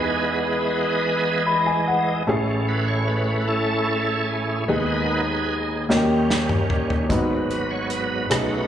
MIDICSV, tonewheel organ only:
0, 0, Header, 1, 2, 480
1, 0, Start_track
1, 0, Key_signature, 5, "minor"
1, 0, Tempo, 805153
1, 1350, Time_signature, 6, 3, 24, 8
1, 5170, End_track
2, 0, Start_track
2, 0, Title_t, "Tonewheel organ"
2, 0, Program_c, 0, 16
2, 0, Note_on_c, 0, 52, 46
2, 0, Note_on_c, 0, 56, 44
2, 0, Note_on_c, 0, 59, 50
2, 0, Note_on_c, 0, 68, 53
2, 0, Note_on_c, 0, 71, 78
2, 0, Note_on_c, 0, 75, 51
2, 849, Note_off_c, 0, 71, 0
2, 850, Note_off_c, 0, 59, 0
2, 852, Note_off_c, 0, 68, 0
2, 1328, Note_off_c, 0, 52, 0
2, 1328, Note_off_c, 0, 56, 0
2, 1330, Note_off_c, 0, 75, 0
2, 1353, Note_on_c, 0, 45, 48
2, 1360, Note_on_c, 0, 57, 43
2, 1366, Note_on_c, 0, 61, 55
2, 1600, Note_on_c, 0, 71, 77
2, 1717, Note_on_c, 0, 73, 80
2, 1719, Note_off_c, 0, 71, 0
2, 1831, Note_on_c, 0, 71, 86
2, 1837, Note_off_c, 0, 73, 0
2, 2067, Note_off_c, 0, 61, 0
2, 2072, Note_on_c, 0, 69, 78
2, 2073, Note_on_c, 0, 64, 60
2, 2074, Note_on_c, 0, 61, 56
2, 2078, Note_off_c, 0, 71, 0
2, 2552, Note_on_c, 0, 68, 65
2, 2566, Note_off_c, 0, 69, 0
2, 2768, Note_off_c, 0, 45, 0
2, 2768, Note_off_c, 0, 64, 0
2, 2769, Note_off_c, 0, 61, 0
2, 2772, Note_off_c, 0, 57, 0
2, 2775, Note_off_c, 0, 68, 0
2, 2790, Note_on_c, 0, 51, 48
2, 2792, Note_on_c, 0, 59, 45
2, 2793, Note_on_c, 0, 71, 77
2, 2794, Note_on_c, 0, 63, 52
2, 2795, Note_on_c, 0, 68, 54
2, 3110, Note_off_c, 0, 51, 0
2, 3111, Note_off_c, 0, 59, 0
2, 3308, Note_off_c, 0, 71, 0
2, 3490, Note_off_c, 0, 63, 0
2, 3490, Note_off_c, 0, 68, 0
2, 3512, Note_on_c, 0, 51, 46
2, 3515, Note_on_c, 0, 55, 41
2, 3518, Note_on_c, 0, 61, 49
2, 4208, Note_off_c, 0, 51, 0
2, 4210, Note_off_c, 0, 55, 0
2, 4212, Note_off_c, 0, 61, 0
2, 4225, Note_on_c, 0, 44, 48
2, 4229, Note_on_c, 0, 54, 40
2, 4235, Note_on_c, 0, 59, 52
2, 4477, Note_on_c, 0, 71, 61
2, 4594, Note_on_c, 0, 73, 63
2, 4598, Note_off_c, 0, 71, 0
2, 4705, Note_off_c, 0, 73, 0
2, 4712, Note_on_c, 0, 71, 68
2, 4925, Note_off_c, 0, 44, 0
2, 4927, Note_off_c, 0, 54, 0
2, 4930, Note_off_c, 0, 59, 0
2, 4946, Note_off_c, 0, 71, 0
2, 4946, Note_on_c, 0, 47, 47
2, 4948, Note_on_c, 0, 57, 43
2, 4951, Note_on_c, 0, 63, 54
2, 4953, Note_on_c, 0, 66, 51
2, 4953, Note_on_c, 0, 71, 73
2, 5170, Note_off_c, 0, 47, 0
2, 5170, Note_off_c, 0, 57, 0
2, 5170, Note_off_c, 0, 63, 0
2, 5170, Note_off_c, 0, 66, 0
2, 5170, Note_off_c, 0, 71, 0
2, 5170, End_track
0, 0, End_of_file